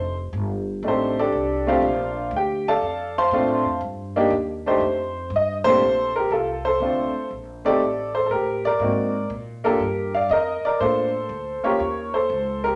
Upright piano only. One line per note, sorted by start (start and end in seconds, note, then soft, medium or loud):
0.00 0.14 C5 medium
0.84 1.13 A3 medium
0.84 1.14 D4 medium
0.84 1.14 D#4 soft
0.84 0.87 G4 medium
0.88 1.18 C4 medium
0.88 1.18 G4 medium
0.88 1.18 A4 medium
0.88 1.18 C5 medium
1.19 1.65 D4 medium
1.19 1.64 G4 medium
1.19 1.64 A4 medium
1.19 1.64 D5 medium
1.67 1.81 A3 medium
1.67 1.82 C4 medium
1.67 1.82 D4 medium
1.67 2.30 F4 medium
1.67 1.82 G4 medium
1.67 2.30 C5 medium
1.67 2.30 D5 medium
1.67 2.30 F5 medium
2.37 2.67 G4 medium
2.37 2.67 G5 medium
2.68 3.14 A4 medium
2.68 3.14 D5 medium
2.68 3.14 F5 medium
2.68 3.13 A5 loud
3.18 3.79 C5 medium
3.18 3.79 F5 medium
3.18 3.79 A5 medium
3.18 3.79 C6 loud
3.33 3.63 A3 medium
3.33 3.63 C4 medium
3.33 3.63 D4 medium
3.33 3.63 F4 medium
4.16 4.30 A#3 medium
4.16 4.31 D4 medium
4.16 4.31 D#4 medium
4.16 4.31 G4 medium
4.66 4.81 A3 medium
4.66 4.81 D4 medium
4.66 4.81 D#4 medium
4.66 4.81 G4 medium
4.66 5.29 C5 medium
5.36 5.55 D#5 medium
5.64 5.80 A#2 medium
5.64 5.81 A3 medium
5.64 5.81 C4 medium
5.64 5.81 D4 medium
5.64 5.81 G4 medium
5.64 6.12 A4 medium
5.64 6.11 C5 loud
6.16 6.32 G4 medium
6.16 6.32 A#4 medium
6.32 6.63 F4 medium
6.32 6.65 A4 medium
6.65 7.28 A4 medium
6.65 7.27 C5 loud
6.81 7.11 A3 medium
6.81 7.11 C4 medium
6.81 7.11 D4 soft
6.81 7.12 F4 medium
7.65 7.79 A3 medium
7.65 7.80 C4 medium
7.65 7.80 D#4 medium
7.65 7.80 G4 medium
7.65 8.12 A4 medium
7.65 8.12 D5 loud
8.15 8.24 A4 medium
8.15 8.26 C5 medium
8.26 8.30 A4 medium
8.31 8.63 G4 medium
8.31 8.65 A#4 medium
8.65 9.28 A#4 medium
8.65 9.27 D5 loud
8.81 9.11 A#3 medium
8.81 9.11 C4 medium
8.81 9.11 D#4 medium
8.81 9.12 F#4 medium
9.64 9.79 A#3 medium
9.64 9.79 D4 medium
9.64 9.79 F4 medium
9.64 10.12 G4 medium
9.64 9.80 A4 medium
9.64 10.11 A#4 medium
10.15 10.31 D5 medium
10.15 10.31 F5 medium
10.31 10.63 A#4 medium
10.31 10.65 D#5 loud
10.65 10.80 A#4 medium
10.65 10.80 D5 medium
10.80 11.10 A#3 medium
10.80 11.11 D4 medium
10.80 11.11 F4 medium
10.80 11.60 A4 medium
10.80 11.66 C5 medium
11.63 11.78 A#3 medium
11.63 11.78 C#4 medium
11.63 11.79 F4 medium
11.63 11.79 G4 medium
11.63 12.11 A#4 medium
11.63 12.15 C#5 medium
12.14 12.61 A4 medium
12.14 12.65 C5 medium
12.64 12.76 G4 medium
12.64 12.76 A#4 medium